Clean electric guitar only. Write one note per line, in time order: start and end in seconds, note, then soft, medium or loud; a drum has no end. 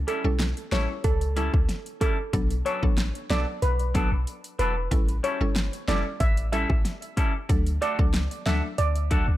0.07 0.22 G3 medium
0.07 0.22 C#4 medium
0.07 0.23 E4 medium
0.07 0.23 A4 loud
0.72 0.87 G3 medium
0.72 0.87 C#4 medium
0.72 0.87 E4 medium
0.72 0.87 A4 loud
1.36 1.51 G3 medium
1.36 1.51 C#4 medium
1.36 1.52 E4 medium
1.36 1.52 A4 loud
1.53 muted clean electric guitar stroke soft
2.01 2.16 G3 medium
2.01 2.16 C#4 medium
2.01 2.16 E4 medium
2.01 2.16 A4 medium
2.65 2.80 F#3 medium
2.65 2.80 B3 medium
2.65 2.81 D4 medium
2.65 2.81 A4 medium
3.30 3.45 F#3 medium
3.30 3.45 B3 medium
3.30 3.45 D4 medium
3.30 3.45 A4 medium
3.94 4.09 F#3 medium
3.94 4.09 B3 medium
3.94 4.10 D4 medium
3.94 4.10 A4 loud
4.12 muted clean electric guitar stroke soft
4.59 4.74 F#3 medium
4.59 4.74 B3 medium
4.59 4.74 D4 loud
4.59 4.74 A4 loud
5.23 5.38 G3 medium
5.23 5.38 C#4 medium
5.23 5.39 E4 loud
5.23 5.39 A4 medium
5.88 6.03 G3 medium
5.88 6.03 C#4 medium
5.88 6.03 E4 medium
5.88 6.03 A4 loud
6.52 6.67 G3 medium
6.52 6.67 C#4 medium
6.52 6.68 E4 medium
6.52 6.68 A4 loud
6.70 muted clean electric guitar stroke soft
7.17 7.32 G3 medium
7.17 7.32 C#4 medium
7.17 7.32 E4 loud
7.17 7.32 A4 medium
7.81 7.96 A3 loud
7.81 7.97 D4 medium
7.81 7.97 F#4 loud
7.81 7.97 A4 loud
8.46 8.61 A3 medium
8.46 8.61 D4 loud
8.46 8.61 F#4 medium
8.46 8.61 A4 medium
9.11 9.25 A3 medium
9.11 9.26 D4 loud
9.11 9.26 F#4 loud
9.11 9.26 A4 medium
9.28 muted clean electric guitar stroke soft